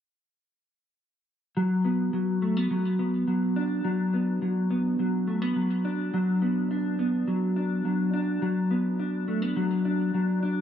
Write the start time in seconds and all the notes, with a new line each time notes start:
1.57 F#3
1.85 B3
2.13 F#3
2.42 A3
2.57 B3
2.71 F#3
2.99 B3
3.27 F#3
3.56 D4
3.84 F#3
4.14 B3
4.42 F#3
4.71 B3
4.99 F#3
5.27 A3
5.42 B3
5.56 F#3
5.85 D4
6.14 F#3
6.42 B3
6.71 D4
6.99 B3
7.28 F#3
7.56 D4
7.85 F#3
8.14 D4
8.42 F#3
8.71 B3
8.99 D4
9.28 A3
9.42 B3
9.56 F#3
9.85 D4
10.14 F#3
10.43 D4